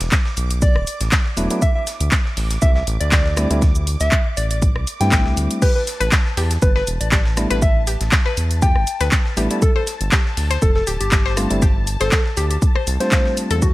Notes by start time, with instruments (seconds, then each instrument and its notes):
Already playing: analog synth pad D6
0.01 analog synth bass E1, snare, closed hi-hat
0.12 kick, snare, clap, closed hi-hat, shaker
0.26 snare
0.37 analog synth bass B1, open hi-hat, shaker
0.51 closed hi-hat
0.62 soft synth lead D5, kick, closed hi-hat, shaker
0.76 analog synth bass D1, cross-stick
0.87 open hi-hat, shaker
1.00 analog synth bass A1, snare, closed hi-hat
1.12 kick, snare, clap, closed hi-hat, shaker
1.26 snare
1.37 analog synth bass E1, tine electric piano F#3 A3 B3 D4 E4, open hi-hat, shaker
1.50 tine electric piano F#3 A3 B3 D4 E4, closed hi-hat
1.62 soft synth lead E5, kick, closed hi-hat, shaker
1.75 soft synth lead E5
1.87 snare, open hi-hat, shaker
2.00 analog synth bass D2, closed hi-hat
2.12 kick, snare, clap, closed hi-hat, shaker
2.25 snare
2.37 analog synth bass A1, snare, open hi-hat
2.50 snare, closed hi-hat
2.62 analog synth bass C2, soft synth lead E5, kick, closed hi-hat, shaker
2.75 soft synth lead E5, snare
2.87 analog synth bass A1, open hi-hat
3.00 analog synth bass D2, soft synth lead D5, closed hi-hat
3.12 kick, snare, clap, closed hi-hat, shaker
3.26 snare
3.37 tine electric piano G3 A3 C4 D4 E4, cross-stick, open hi-hat, shaker
3.50 analog synth bass D2, tine electric piano G3 A3 C4 D4 E4, closed hi-hat
3.62 kick, snare, closed hi-hat, shaker
3.75 shaker
3.87 open hi-hat
4.01 analog synth bass D2, soft synth lead E5, snare, closed hi-hat, shaker
4.12 kick, clap, closed hi-hat, shaker
4.37 analog synth bass A1, soft synth lead D5, open hi-hat, shaker
4.51 soft synth lead D5, closed hi-hat
4.62 kick, closed hi-hat, shaker
4.75 analog synth bass C2, cross-stick
4.87 open hi-hat, shaker
5.00 analog synth bass G2, tine electric piano G3 A3 C4 D4 E4, soft synth lead G5, snare, closed hi-hat
5.12 analog synth bass A1, kick, snare, clap, closed hi-hat, shaker
5.25 analog synth bass C2, snare
5.37 analog synth bass D2, open hi-hat, shaker
5.51 closed hi-hat
5.62 synth arpeggio sound G4, soft synth lead B4, analog synth pad A5, kick, closed hi-hat, crash, shaker
5.76 soft synth lead B4
5.87 snare, open hi-hat, shaker
6.00 analog synth bass A1, synth arpeggio sound B4, closed hi-hat
6.12 kick, snare, clap, closed hi-hat, shaker
6.26 snare
6.37 analog synth bass E2, synth arpeggio sound G4, snare, open hi-hat
6.51 snare, closed hi-hat
6.62 analog synth bass G1, soft synth lead B4, kick, closed hi-hat, shaker
6.75 soft synth lead B4, synth arpeggio sound B4, snare
6.87 analog synth bass E1, open hi-hat, shaker
7.00 analog synth bass A1, soft synth lead D5, closed hi-hat
7.12 synth arpeggio sound G4, soft synth lead D5, kick, snare, clap, closed hi-hat, shaker
7.26 snare
7.37 tine electric piano G3 A3 B3 D4 E4, cross-stick, open hi-hat, shaker
7.50 analog synth bass A1, tine electric piano G3 A3 B3 D4 E4, synth arpeggio sound B4, closed hi-hat
7.62 soft synth lead E5, kick, closed hi-hat, shaker
7.87 synth arpeggio sound G4, open hi-hat, shaker
8.01 analog synth bass A1, snare, closed hi-hat
8.12 kick, snare, clap, closed hi-hat, shaker
8.26 synth arpeggio sound B4, snare
8.37 analog synth bass E2, open hi-hat, shaker
8.51 closed hi-hat
8.62 synth arpeggio sound G4, soft synth lead G5, kick, closed hi-hat, shaker
8.76 analog synth bass G1, cross-stick
8.87 open hi-hat, shaker
9.01 analog synth bass D2, synth arpeggio sound B4, snare, closed hi-hat
9.12 kick, snare, clap, closed hi-hat, shaker
9.26 snare
9.37 analog synth bass A1, tine electric piano G3 A3 B3 D4 E4, synth arpeggio sound G4, open hi-hat, shaker
9.50 tine electric piano G3 A3 B3 D4 E4, closed hi-hat
9.62 soft synth lead A4, kick, closed hi-hat, shaker
9.76 soft synth lead A4, synth arpeggio sound C5
9.87 snare, open hi-hat, shaker
10.01 analog synth bass G1, closed hi-hat
10.12 synth arpeggio sound G4, kick, snare, clap, closed hi-hat, shaker
10.26 snare
10.37 analog synth bass D2, snare, open hi-hat
10.51 synth arpeggio sound C5, snare, closed hi-hat
10.62 analog synth bass F1, soft synth lead A4, kick, closed hi-hat, shaker
10.76 soft synth lead A4, snare
10.87 analog synth bass D1, synth arpeggio sound G4, open hi-hat, shaker
11.01 analog synth bass G1, soft synth lead G4, closed hi-hat
11.12 kick, snare, clap, closed hi-hat, shaker
11.26 synth arpeggio sound C5, snare
11.37 tine electric piano G3 A3 C4 D4 F4, cross-stick, open hi-hat, shaker
11.50 analog synth bass G1, tine electric piano G3 A3 C4 D4 E4, closed hi-hat
11.62 synth arpeggio sound G4, kick, closed hi-hat, shaker
11.87 open hi-hat, shaker
12.00 analog synth bass G1, soft synth lead A4, synth arpeggio sound C5, snare, closed hi-hat
12.12 kick, snare, clap, closed hi-hat, shaker
12.26 snare
12.37 analog synth bass D2, soft synth lead G4, synth arpeggio sound G4, open hi-hat, shaker
12.50 soft synth lead G4, closed hi-hat
12.62 kick, closed hi-hat, shaker
12.76 synth arpeggio sound C5, cross-stick
12.87 analog synth bass C2, open hi-hat, shaker
13.00 tine electric piano G3 A3 C4 D4 F4, soft synth lead C5, snare, closed hi-hat
13.12 synth arpeggio sound F5, kick, snare, clap, closed hi-hat, shaker
13.26 snare
13.37 open hi-hat, shaker
13.50 analog synth bass E2, synth arpeggio sound A4, closed hi-hat
13.62 soft synth lead F#4, kick, closed hi-hat, shaker